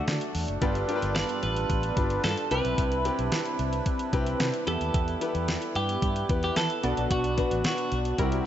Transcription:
Already playing: D3 F#3 A3 D4 F#4 A4 D5
0.08 D3, snare, closed hi-hat
0.21 closed hi-hat
0.35 E2, open hi-hat
0.48 F#1, closed hi-hat
0.61 G1 G2 G3 B3 D4 F4 G4 A4 B4 D5, kick, closed hi-hat
0.75 closed hi-hat
0.88 D4 F4 G4 A#4, closed hi-hat
0.96 B4
1.02 G1, closed hi-hat
1.16 D5, snare, closed hi-hat
1.29 closed hi-hat
1.43 A1 B4, closed hi-hat
1.56 closed hi-hat
1.70 A1, kick, closed hi-hat
1.83 closed hi-hat
1.96 G1 D4 F4 G4 B4, kick, closed hi-hat
2.10 closed hi-hat
2.24 G2 A4, snare, closed hi-hat
2.38 closed hi-hat
2.50 C2 C3 C4 E4 G4 B4 E5, closed hi-hat
2.65 B1, closed hi-hat
2.78 C2, kick, closed hi-hat
2.92 closed hi-hat
3.05 C4 E4 G4 B4, closed hi-hat
3.19 B1, closed hi-hat
3.32 snare, closed hi-hat
3.46 closed hi-hat
3.59 C2, closed hi-hat
3.73 closed hi-hat
3.86 kick, closed hi-hat
3.99 closed hi-hat
4.13 C2 C4 E4 G4 B4, kick, closed hi-hat
4.26 closed hi-hat
4.40 C3, snare, closed hi-hat
4.54 closed hi-hat
4.67 E2 E3 B3 E4 G4 A4 B4 E5, closed hi-hat
4.81 D#2, closed hi-hat
4.94 E2, kick, closed hi-hat
5.08 closed hi-hat
5.21 B3 E4 G4 B4, closed hi-hat
5.35 E2, closed hi-hat
5.48 snare, closed hi-hat
5.62 closed hi-hat
5.75 G2 G4, closed hi-hat
5.89 closed hi-hat
6.02 G2, kick, closed hi-hat
6.16 closed hi-hat
6.29 E2 B3 E4 G4 B4, kick, closed hi-hat
6.43 G4, closed hi-hat
6.56 E3 A4, snare, closed hi-hat
6.70 closed hi-hat
6.83 B1 B2 F#3 B3 D4 F#4 B4 D5, closed hi-hat
6.97 A#1, closed hi-hat
7.11 B1 F#4, kick, closed hi-hat
7.24 closed hi-hat
7.37 B3 D4 F#4 B4, kick, closed hi-hat
7.51 A1, closed hi-hat
7.64 F#4, snare, closed hi-hat
7.78 closed hi-hat
7.92 B1, closed hi-hat
8.05 closed hi-hat
8.18 C2 C3 G3 C4 E4 G4 A#4, kick, closed hi-hat
8.32 closed hi-hat

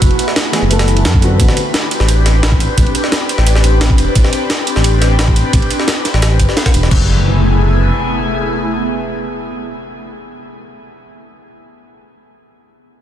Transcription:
Already playing: A3 E4 F#4 B4
0.02 F#1, kick, closed hi-hat, ride
0.11 ride
0.19 closed hi-hat, ride
0.28 snare
0.36 snare, closed hi-hat, ride
0.52 E3 A3 B3 G#4, snare, closed hi-hat, ride
0.62 F#1
0.69 E3 A3 B3 A4, closed hi-hat, ride
0.79 snare, ride
0.88 closed hi-hat
0.95 E3 A3 B3 A4, ride
1.05 F#2, snare, closed hi-hat, ride
1.14 kick
1.21 D3 B3 C4 F#4, closed hi-hat, ride
1.40 A1 C4 D4 G4, kick, closed hi-hat, ride
1.49 snare
1.57 closed hi-hat, ride
1.74 snare, closed hi-hat, ride
1.91 closed hi-hat, ride
2.00 A1, snare
2.09 closed hi-hat, ride
2.26 snare, closed hi-hat, ride
2.43 snare, closed hi-hat, ride
2.52 kick
2.60 closed hi-hat, ride
2.78 A1, kick, closed hi-hat, ride
2.87 ride
2.95 closed hi-hat, ride
3.04 snare
3.12 snare, closed hi-hat, ride
3.29 closed hi-hat, ride
3.38 A1, snare
3.47 closed hi-hat, ride
3.55 snare
3.64 A1, closed hi-hat, ride
3.81 snare, closed hi-hat, ride
3.90 kick
3.98 E1, closed hi-hat, ride
4.15 A1, kick, closed hi-hat, ride
4.24 snare
4.33 closed hi-hat, ride
4.50 snare, closed hi-hat, ride
4.67 closed hi-hat, ride
4.76 A1, snare
4.84 closed hi-hat, ride
5.02 snare, closed hi-hat, ride
5.19 snare, closed hi-hat, ride
5.28 kick
5.36 closed hi-hat, ride
5.53 A1, kick, closed hi-hat, ride
5.62 ride
5.71 closed hi-hat, ride
5.80 snare
5.88 snare, closed hi-hat, ride
6.05 snare, closed hi-hat, ride
6.14 A1, snare
6.22 snare, closed hi-hat, ride
6.40 G1, kick, closed hi-hat, ride
6.49 snare
6.57 snare, closed hi-hat, ride
6.66 kick, snare, ride
6.74 E1, closed hi-hat, ride
6.83 snare
6.91 F#1 A3 B3 E4 G#4, kick, crash, impact

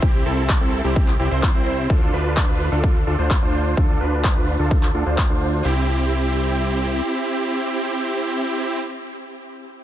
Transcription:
0.02 C2 C4 E4 G4, kick
0.26 C2 C4 E4 A4
0.49 kick, clap
0.61 C2 C4 E4 A4
0.84 C2 C4 E4 G4
0.96 kick
1.08 clap
1.20 C2 C4 E4 G4
1.31 C2 C4 E4 C5
1.43 kick, clap
1.55 C2 C4 E4 C5
1.90 D2 D4 F4 A4, kick
2.13 D2 D4 F4 B4
2.37 kick, clap
2.48 D2 D4 F4 B4
2.72 D2 D4 F4 A4
2.84 kick
3.07 D2 D4 F4 A4
3.19 D2 D4 F4 C5
3.30 kick, clap
3.42 D2 D4 F4 C5
3.77 D2 D4 F4 A4, kick
4.01 D2 D4 F4 B4
4.24 kick, clap
4.36 D2 D4 F4 B4
4.59 D2 D4 F4 A4
4.71 kick
4.83 clap
4.95 D2 D4 F4 A4
5.06 D2 D4 F4 C5
5.18 kick, clap
5.30 D2 D4 F4 C5
5.65 C2 C4 E4 G4

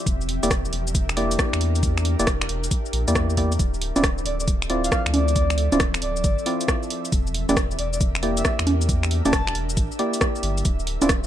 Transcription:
Already playing: G4 E5
0.06 E1 D4 A#4, kick, closed hi-hat, cabasa
0.21 cabasa
0.29 open hi-hat
0.43 E1 A#3 E4 G4 D5, closed hi-hat, cabasa
0.51 kick, cross-stick, closed hi-hat, cabasa
0.65 cabasa
0.73 E1, open hi-hat
0.87 cabasa
0.95 kick, closed hi-hat, cabasa
1.09 finger snap, cabasa
1.17 A#3 E4 G4 D5, open hi-hat
1.31 closed hi-hat, cabasa
1.39 kick, cross-stick, cabasa
1.53 E2, finger snap, cabasa
1.61 open hi-hat
1.75 closed hi-hat, cabasa
1.83 kick, closed hi-hat, cabasa
1.98 finger snap, cabasa
2.05 open hi-hat
2.19 E1 A#3 E4 G4 D5, closed hi-hat, cabasa
2.27 kick, cross-stick, closed hi-hat, cabasa
2.41 finger snap, cabasa
2.49 E1, open hi-hat
2.64 closed hi-hat, cabasa
2.71 kick, closed hi-hat, cabasa
2.86 cabasa
2.93 A#1, open hi-hat
3.08 E2 A#3 E4 G4 D5, closed hi-hat, cabasa
3.15 kick, cross-stick, cabasa
3.30 cabasa
3.37 A#3 E4 G4 D5, kick, open hi-hat
3.52 closed hi-hat, cabasa
3.59 D1 F3 C4 A4 E5, kick, closed hi-hat, cabasa
3.74 cabasa
3.82 open hi-hat
3.96 D1 C4 E4 F4 D5, closed hi-hat, high conga, cabasa
4.03 kick, cross-stick, closed hi-hat, cabasa
4.18 cabasa
4.25 D1 D5, open hi-hat
4.40 D5, cabasa
4.48 kick, closed hi-hat, cabasa
4.62 finger snap, cabasa
4.70 C4 E4 F4 D5, open hi-hat
4.84 F5, closed hi-hat, cabasa
4.92 F5, kick, cross-stick, cabasa
5.06 D2, finger snap, cabasa
5.14 D5, open hi-hat, high conga
5.28 closed hi-hat, cabasa
5.36 kick, closed hi-hat, cabasa
5.50 finger snap, cabasa
5.58 open hi-hat
5.72 D1 C4 E4 F4 D5, closed hi-hat, high conga, cabasa
5.80 kick, cross-stick, closed hi-hat, cabasa
5.94 finger snap, cabasa
6.02 D1 D5, open hi-hat
6.16 cabasa
6.24 G1, kick, closed hi-hat, cabasa
6.39 cabasa
6.46 C4 E4 F4 D5, open hi-hat
6.61 closed hi-hat, cabasa
6.68 kick, cross-stick, cabasa
6.83 cabasa
6.90 open hi-hat
7.05 closed hi-hat, cabasa
7.12 E1 D4 G4 A#4, kick, closed hi-hat, cabasa
7.27 cabasa
7.34 open hi-hat
7.49 E1 A#3 E4 G4 D5, closed hi-hat, high conga, cabasa
7.56 kick, cross-stick, closed hi-hat, cabasa
7.71 cabasa
7.78 E1 D5, open hi-hat
7.93 D5, cabasa
8.01 kick, closed hi-hat, cabasa
8.15 finger snap, cabasa
8.23 A#3 E4 G4 D5, open hi-hat
8.37 E5, closed hi-hat, cabasa
8.45 E5, kick, cross-stick, cabasa
8.59 E2, finger snap, cabasa
8.67 open hi-hat, high conga
8.81 closed hi-hat, cabasa
8.89 kick, closed hi-hat, cabasa
9.03 finger snap, cabasa
9.11 open hi-hat
9.25 E1 A#3 E4 G4 D5 A5, closed hi-hat, high conga, cabasa
9.33 kick, cross-stick, closed hi-hat, cabasa
9.47 finger snap, cabasa
9.55 E1, open hi-hat
9.69 cabasa
9.77 A1, kick, closed hi-hat, cabasa
9.92 cabasa
9.99 A#3 E4 G4 D5, open hi-hat
10.14 closed hi-hat, cabasa
10.21 kick, cross-stick, cabasa
10.36 cabasa
10.43 G1, open hi-hat
10.58 closed hi-hat, cabasa
10.65 D1 F3 C4 A4, kick, closed hi-hat, cabasa
10.79 cabasa
10.87 open hi-hat
11.02 D1 C4 E4 F4 D5, closed hi-hat, high conga, cabasa
11.09 kick, cross-stick, closed hi-hat, cabasa

